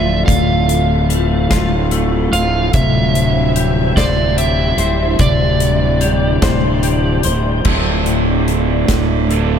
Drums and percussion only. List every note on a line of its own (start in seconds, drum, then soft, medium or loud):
0.28 kick medium
0.28 closed hi-hat medium
0.69 closed hi-hat medium
1.10 closed hi-hat medium
1.51 kick medium
1.51 snare medium
1.51 closed hi-hat medium
1.91 closed hi-hat medium
2.33 closed hi-hat medium
2.73 kick loud
2.73 closed hi-hat medium
3.15 closed hi-hat medium
3.56 closed hi-hat medium
3.97 kick medium
3.97 snare medium
3.97 closed hi-hat medium
4.38 closed hi-hat medium
4.78 closed hi-hat medium
5.19 kick loud
5.19 closed hi-hat medium
5.60 closed hi-hat medium
6.01 closed hi-hat medium
6.42 kick medium
6.42 snare loud
6.42 closed hi-hat medium
6.83 closed hi-hat medium
7.23 closed hi-hat medium
7.65 kick medium
7.65 crash medium
8.06 closed hi-hat medium
8.48 closed hi-hat medium
8.88 kick medium
8.88 snare medium
8.88 closed hi-hat medium
9.31 closed hi-hat medium